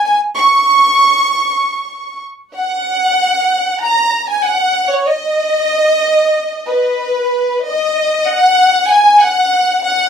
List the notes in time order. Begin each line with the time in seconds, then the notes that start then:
0.05 G#5
0.37 C#6
2.56 F#5
3.82 A#5
4.29 G#5
4.44 F#5
4.92 C#5
5.08 D#5
6.69 B4
7.65 D#5
8.27 F#5
8.90 G#5
9.23 F#5
9.84 F#5